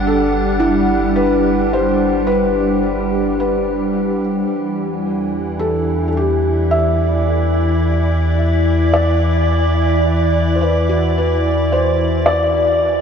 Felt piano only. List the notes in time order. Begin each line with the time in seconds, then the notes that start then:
Already playing: B4
0.07 A4
1.16 B4
1.73 C5
2.27 B4
3.40 B4
5.59 A4
6.08 A4
6.17 G4
6.71 E5
8.94 D5
10.55 C5
10.61 B4
11.18 B4
11.72 C5
12.26 D5